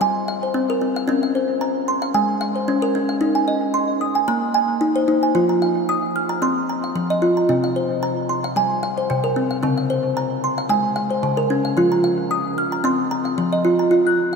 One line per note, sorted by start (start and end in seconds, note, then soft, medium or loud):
0.00 0.44 G3 loud
0.00 0.15 F5 medium
0.00 0.42 G#5 medium
0.00 0.15 C6 medium
0.28 0.55 F5 medium
0.43 0.82 C5 medium
0.54 0.76 C4 medium
0.70 0.96 A#4 medium
0.81 1.03 C4 medium
0.96 1.22 F5 medium
1.08 1.35 C4 medium
1.08 1.94 C#4 medium
1.23 1.62 F5 medium
1.35 1.76 C5 medium
1.61 1.88 A#5 medium
1.88 2.29 C6 medium
2.02 2.29 F5 medium
2.14 2.58 G#3 medium
2.14 2.56 G#5 medium
2.41 2.68 F5 medium
2.56 2.95 C5 medium
2.68 2.90 C#4 medium
2.82 3.09 A#4 medium
2.95 3.17 C#4 medium
3.09 3.36 F5 medium
3.21 4.08 D#4 medium
3.35 3.75 G#5 medium
3.48 3.89 D#5 medium
3.74 4.01 C6 medium
4.01 4.43 D#6 medium
4.15 4.43 G#5 medium
4.28 4.72 A#3 loud
4.28 4.69 A#5 medium
4.54 4.82 G#5 medium
4.81 5.03 D#4 medium
4.96 5.23 C5 medium
5.08 5.30 D#4 medium
5.23 5.50 G#5 medium
5.35 6.22 F3 medium
5.35 5.62 F4 medium
5.49 5.89 A#5 medium
5.62 6.03 F5 medium
5.89 6.16 D#6 medium
6.16 6.57 F6 medium
6.29 6.57 A#5 medium
6.42 6.86 C4 medium
6.42 6.84 C6 medium
6.69 6.96 A#5 medium
6.84 7.23 F5 medium
6.96 7.17 F3 medium
7.10 7.37 D#5 medium
7.22 7.44 F4 medium
7.37 7.64 A#5 medium
7.49 8.36 C3 medium
7.49 7.76 C4 medium
7.64 8.03 F5 medium
7.76 8.17 C5 medium
8.03 8.30 A#5 medium
8.29 8.71 C6 medium
8.44 8.71 F5 medium
8.56 9.00 G3 medium
8.56 8.98 G#5 medium
8.83 9.10 F5 medium
8.98 9.37 C5 medium
9.10 9.32 C3 loud
9.24 9.51 A#4 medium
9.36 9.58 C4 medium
9.51 9.76 F5 medium
9.63 10.50 C#3 medium
9.63 9.90 C4 medium
9.78 10.17 F5 medium
9.90 10.31 C5 medium
10.17 10.44 A#5 medium
10.44 10.85 C6 medium
10.58 10.85 F5 medium
10.69 11.13 G#3 medium
10.69 11.11 G#5 medium
10.96 11.23 F5 medium
11.11 11.50 C5 medium
11.23 11.45 C#3 medium
11.37 11.64 A#4 medium
11.50 11.72 C#4 medium
11.65 11.92 F5 medium
11.77 12.64 F3 medium
11.77 12.04 F4 medium
11.92 12.31 A#5 medium
12.04 12.45 F5 medium
12.31 12.58 D#6 medium
12.58 12.99 F6 medium
12.72 12.99 A#5 medium
12.84 13.28 C4 loud
12.84 13.26 C6 medium
13.11 13.38 A#5 medium
13.25 13.65 F5 medium
13.38 13.60 F3 medium
13.53 13.79 D#5 medium
13.65 13.86 F4 medium
13.79 14.06 A#5 medium
13.91 14.35 F4 medium
14.07 14.36 F#6 medium